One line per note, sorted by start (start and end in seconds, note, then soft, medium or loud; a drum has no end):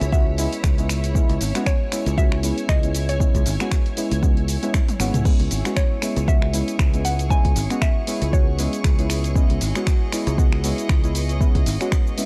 0.00 0.46 C#2 loud
0.00 12.26 E4 medium
0.00 12.26 C#5 medium
0.00 0.14 G#5 loud
0.00 1.14 B5 medium
0.00 closed hi-hat medium
0.00 shaker soft
0.12 0.33 G#3 medium
0.12 0.33 B3 medium
0.12 0.33 C#4 medium
0.12 0.33 F#4 loud
0.12 0.85 E5 medium
0.12 kick loud
0.12 shaker soft
0.38 0.74 G#3 medium
0.38 0.75 B3 medium
0.38 0.75 C#4 medium
0.38 0.75 E4 loud
0.38 open hi-hat loud
0.38 shaker medium
0.53 closed hi-hat medium
0.53 shaker soft
0.64 1.23 C#2 loud
0.64 finger snap loud
0.64 kick loud
0.64 shaker soft
0.78 1.12 G#3 medium
0.78 1.12 B3 medium
0.78 1.12 C#4 medium
0.78 1.13 E4 medium
0.78 closed hi-hat medium
0.78 shaker soft
0.89 finger snap medium
0.89 open hi-hat loud
0.89 shaker medium
1.04 closed hi-hat medium
1.04 shaker soft
1.15 1.35 G#3 loud
1.15 1.36 B3 medium
1.15 1.36 C#4 medium
1.15 1.36 E4 loud
1.15 5.24 G#5 medium
1.15 kick loud
1.15 shaker soft
1.29 1.37 C#2 loud
1.29 closed hi-hat medium
1.41 1.51 G#1 loud
1.41 open hi-hat loud
1.41 shaker medium
1.55 1.89 G#3 medium
1.55 1.89 B3 medium
1.55 1.89 C#4 medium
1.55 1.90 F#4 loud
1.55 finger snap medium
1.55 closed hi-hat medium
1.55 shaker soft
1.66 2.19 C#5 loud
1.66 finger snap loud
1.66 kick loud
1.66 shaker soft
1.92 2.06 G#3 medium
1.92 2.06 B3 medium
1.92 2.06 C#4 medium
1.92 2.06 E4 medium
1.92 finger snap medium
1.92 open hi-hat loud
1.92 shaker medium
2.06 2.51 C#2 loud
2.06 closed hi-hat medium
2.06 shaker soft
2.17 2.38 G#3 medium
2.17 2.38 B3 medium
2.17 2.38 C#4 medium
2.17 2.38 F#4 loud
2.17 2.70 E5 loud
2.17 kick loud
2.17 shaker soft
2.32 finger snap medium
2.43 2.80 G#3 medium
2.43 2.80 B3 medium
2.43 2.80 C#4 medium
2.43 2.80 E4 loud
2.43 open hi-hat loud
2.43 shaker medium
2.58 closed hi-hat medium
2.58 shaker soft
2.69 3.28 C#2 loud
2.69 3.10 D#5 loud
2.69 finger snap loud
2.69 kick loud
2.69 shaker soft
2.83 3.17 G#3 medium
2.83 3.17 B3 medium
2.83 3.18 C#4 medium
2.83 3.18 E4 medium
2.83 closed hi-hat medium
2.83 shaker soft
2.94 open hi-hat loud
2.94 shaker medium
3.09 4.70 C#5 medium
3.09 closed hi-hat medium
3.09 shaker soft
3.20 3.40 G#3 loud
3.20 3.41 B3 medium
3.20 3.41 C#4 medium
3.20 3.41 E4 loud
3.20 kick loud
3.20 shaker soft
3.35 3.43 C#2 loud
3.35 kick medium
3.35 closed hi-hat medium
3.35 shaker soft
3.46 3.56 G#1 loud
3.46 open hi-hat loud
3.46 shaker medium
3.60 3.94 G#3 medium
3.60 3.94 B3 medium
3.60 3.94 C#4 medium
3.60 3.95 F#4 loud
3.60 finger snap medium
3.60 closed hi-hat medium
3.60 shaker soft
3.71 finger snap loud
3.71 kick loud
3.71 shaker soft
3.86 closed hi-hat soft
3.97 4.11 G#3 medium
3.97 4.11 B3 medium
3.97 4.11 C#4 medium
3.97 4.11 E4 loud
3.97 open hi-hat loud
3.97 shaker medium
4.11 4.56 C#2 loud
4.11 closed hi-hat medium
4.11 shaker soft
4.22 4.43 G#3 medium
4.22 4.43 B3 medium
4.22 4.43 C#4 medium
4.22 4.43 F#4 loud
4.22 kick loud
4.22 shaker soft
4.37 closed hi-hat soft
4.48 open hi-hat loud
4.48 shaker medium
4.62 4.73 G#3 loud
4.62 4.74 B3 medium
4.62 4.74 C#4 medium
4.62 4.74 E4 loud
4.62 closed hi-hat medium
4.62 shaker soft
4.74 finger snap loud
4.74 kick loud
4.74 high tom medium
4.74 shaker soft
4.88 closed hi-hat medium
4.88 high tom medium
4.88 shaker soft
4.99 5.10 G#1 loud
4.99 5.13 G#3 loud
4.99 5.13 B3 medium
4.99 5.14 C#4 medium
4.99 5.14 F#4 loud
4.99 finger snap medium
4.99 open hi-hat loud
4.99 shaker medium
5.14 5.22 C#2 medium
5.14 closed hi-hat medium
5.14 mid tom medium
5.14 shaker soft
5.25 5.46 G#3 loud
5.25 5.46 B3 medium
5.25 5.46 C#4 medium
5.25 5.46 E4 loud
5.25 12.26 G#4 medium
5.25 9.38 G#5 medium
5.25 12.26 C#6 medium
5.25 kick loud
5.25 crash medium
5.25 shaker soft
5.40 5.48 C#2 loud
5.40 closed hi-hat medium
5.51 5.61 G#1 loud
5.51 open hi-hat loud
5.51 shaker medium
5.65 5.99 G#3 medium
5.65 5.99 B3 medium
5.65 6.00 C#4 medium
5.65 6.00 F#4 loud
5.65 finger snap medium
5.65 closed hi-hat medium
5.65 shaker soft
5.77 6.29 C#5 medium
5.77 finger snap loud
5.77 kick loud
5.77 shaker soft
6.02 6.16 G#3 medium
6.02 6.16 B3 medium
6.02 6.16 C#4 medium
6.02 6.16 E4 medium
6.02 finger snap medium
6.02 open hi-hat loud
6.02 shaker medium
6.16 6.61 C#2 loud
6.16 closed hi-hat medium
6.16 shaker soft
6.27 6.48 G#3 medium
6.27 6.48 B3 medium
6.27 6.48 C#4 medium
6.27 6.49 F#4 loud
6.27 7.07 E5 loud
6.27 kick loud
6.27 shaker soft
6.42 finger snap medium
6.53 6.90 G#3 medium
6.53 6.90 B3 medium
6.53 6.90 C#4 medium
6.53 6.90 E4 loud
6.53 open hi-hat loud
6.53 shaker medium
6.68 closed hi-hat medium
6.68 shaker soft
6.79 7.38 C#2 loud
6.79 finger snap loud
6.79 kick loud
6.79 shaker soft
6.93 7.28 G#3 medium
6.93 7.28 B3 medium
6.93 7.28 C#4 medium
6.93 7.28 E4 medium
6.93 closed hi-hat medium
6.93 shaker soft
7.05 7.31 F#5 loud
7.05 open hi-hat loud
7.05 shaker medium
7.19 closed hi-hat medium
7.19 shaker soft
7.30 7.51 G#3 loud
7.30 7.51 B3 medium
7.30 7.51 C#4 medium
7.30 7.51 E4 loud
7.30 7.83 G#5 loud
7.30 kick loud
7.30 shaker soft
7.45 7.53 C#2 medium
7.45 kick medium
7.45 closed hi-hat medium
7.56 7.66 G#1 loud
7.56 open hi-hat loud
7.56 shaker medium
7.70 8.04 G#3 medium
7.70 8.05 B3 medium
7.70 8.05 C#4 medium
7.70 8.05 F#4 medium
7.70 finger snap soft
7.70 closed hi-hat medium
7.70 shaker soft
7.82 8.35 E5 loud
7.82 finger snap loud
7.82 kick loud
7.82 shaker soft
8.07 8.21 G#3 medium
8.07 8.21 B3 medium
8.07 8.21 C#4 medium
8.07 8.22 E4 medium
8.07 open hi-hat loud
8.07 shaker medium
8.22 8.66 C#2 loud
8.22 closed hi-hat medium
8.22 shaker soft
8.33 8.53 G#3 medium
8.33 8.53 B3 medium
8.33 8.54 C#4 medium
8.33 8.54 F#4 loud
8.33 9.06 C#5 medium
8.33 kick loud
8.33 shaker soft
8.58 8.95 G#3 medium
8.58 8.95 B3 medium
8.58 8.95 C#4 medium
8.58 8.96 E4 loud
8.58 open hi-hat loud
8.58 shaker medium
8.73 closed hi-hat medium
8.73 shaker soft
8.84 9.43 C#2 loud
8.84 finger snap loud
8.84 kick loud
8.84 shaker soft
8.98 9.33 G#3 medium
8.98 9.33 B3 medium
8.98 9.33 C#4 medium
8.98 9.33 E4 medium
8.98 closed hi-hat medium
8.98 shaker soft
9.10 finger snap medium
9.10 open hi-hat loud
9.10 shaker medium
9.24 closed hi-hat medium
9.24 shaker soft
9.35 9.56 G#3 loud
9.35 9.56 B3 medium
9.35 9.56 C#4 medium
9.35 9.56 E4 loud
9.35 12.26 D#5 medium
9.35 kick loud
9.35 shaker soft
9.50 9.58 C#2 loud
9.50 closed hi-hat medium
9.61 9.72 G#1 loud
9.61 open hi-hat loud
9.61 shaker medium
9.75 10.10 G#3 medium
9.75 10.10 B3 medium
9.75 10.10 C#4 medium
9.75 10.10 F#4 loud
9.75 finger snap medium
9.75 closed hi-hat medium
9.75 shaker soft
9.87 finger snap loud
9.87 kick loud
9.87 shaker soft
10.12 10.26 G#3 medium
10.12 10.26 B3 medium
10.12 10.27 C#4 medium
10.12 10.27 E4 medium
10.12 finger snap medium
10.12 open hi-hat loud
10.12 shaker medium
10.27 10.72 C#2 loud
10.27 closed hi-hat medium
10.27 shaker soft
10.38 10.58 G#3 medium
10.38 10.59 B3 medium
10.38 10.59 C#4 medium
10.38 10.59 F#4 loud
10.38 kick loud
10.38 shaker soft
10.52 finger snap medium
10.63 11.00 G#3 medium
10.63 11.00 B3 medium
10.63 11.00 C#4 medium
10.63 11.01 E4 loud
10.63 open hi-hat loud
10.63 shaker medium
10.78 closed hi-hat medium
10.78 shaker soft
10.89 11.49 C#2 loud
10.89 finger snap loud
10.89 kick loud
10.89 shaker soft
11.03 11.38 G#3 medium
11.03 11.38 B3 medium
11.03 11.38 C#4 medium
11.03 11.38 E4 medium
11.03 closed hi-hat soft
11.03 shaker soft
11.15 open hi-hat loud
11.15 shaker medium
11.29 closed hi-hat medium
11.29 shaker soft
11.40 11.61 G#3 medium
11.40 11.61 B3 medium
11.40 11.61 C#4 medium
11.40 11.61 E4 loud
11.40 kick loud
11.40 shaker soft
11.55 11.63 C#2 medium
11.55 kick medium
11.55 closed hi-hat medium
11.66 11.77 G#1 loud
11.66 open hi-hat loud
11.66 shaker medium
11.80 12.15 G#3 medium
11.80 12.15 B3 medium
11.80 12.15 C#4 medium
11.80 12.15 F#4 loud
11.80 finger snap soft
11.80 closed hi-hat medium
11.80 shaker soft
11.92 finger snap loud
11.92 kick loud
11.92 shaker soft
12.07 shaker soft
12.17 12.26 G#3 medium
12.17 12.26 B3 medium
12.17 12.26 C#4 medium
12.17 12.26 E4 medium
12.17 open hi-hat loud
12.17 shaker medium